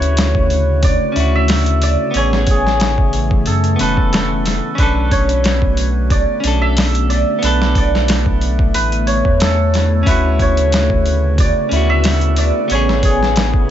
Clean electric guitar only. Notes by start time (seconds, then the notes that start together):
Already playing: C#4 E4 F#4
1.12 C#4 E4
1.20 F#4
2.11 B3 C#4
2.18 G#4
3.76 B3 C#4
3.83 A4
4.75 C#4 D4
4.82 A4
6.40 C#4 D4
6.47 A4
7.39 B3 D4
7.46 A4
10.03 C#4 E4
10.11 F#4
11.69 C#4 E4
11.76 F#4
12.68 B3 C#4
12.75 G#4